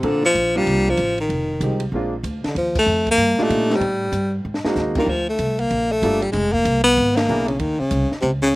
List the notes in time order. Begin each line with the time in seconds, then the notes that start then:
0.03 A#2 D3 F3 A#3 C4 D4 A4, kick, ride
0.23 F3, snare
0.35 A#1, kick, hi-hat pedal, ride
0.55 F3 G3 A#3 C4 D4 F4
0.66 C2, kick, ride
0.90 F3
0.97 A1, kick, hi-hat pedal, ride
1.18 D#3, ride
1.29 F1, kick, ride
1.60 C2 F3 G#3 C4 D#4 G4, kick, hi-hat pedal, ride
1.80 ride
1.92 A#1 G#3 A#3 C4 D4 F4, kick
2.23 D2, kick, hi-hat pedal, ride
2.44 D3, muted upright bass stroke, snare, ride
2.55 D#2 F3, kick, ride
2.75 A3, kick, crash
2.86 F2, hi-hat pedal
3.07 kick, ride
3.11 A#3
3.17 G2, kick, ride
3.38 A#2 G3 D4 D#4 F4, muted upright bass stroke, snare
3.43 A3
3.50 A#2, kick, hi-hat pedal, ride
3.70 A3 B3 C4 D#4 G4, snare
3.76 G3
3.80 A2, kick, ride
4.12 G2, kick, hi-hat pedal, ride
4.45 G#2
4.54 snare
4.64 G#3 A#3 C4 D#4 F#4, muted upright bass stroke, snare
4.76 D#2, snare, hi-hat pedal
4.95 D#3 G3 A#3 D4 F4 A#4, kick, crash
5.07 D2 F3, kick
5.29 A3
5.39 C2, kick, hi-hat pedal, ride
5.59 A#3, ride
5.71 A#1, kick, ride
5.92 A3
6.02 G1 G3 A#3 D4 F4 A4, kick, hi-hat pedal, ride
6.22 G3, ride
6.32 F1 G#3, kick, snare, ride
6.53 A#3, kick
6.65 C2, kick, hi-hat pedal, ride
6.84 B3
6.97 G#1, kick, ride
7.16 A#3, snare, ride
7.28 B1 A#3 B3 D4 E4 G#4, hi-hat pedal
7.47 C#3, ride
7.59 D#2 D#3, kick, ride
7.79 C#3, muted upright bass stroke
7.91 C2, kick, hi-hat pedal, ride
8.12 muted upright bass stroke, snare
8.21 C#2 C3, kick, ride
8.42 C#3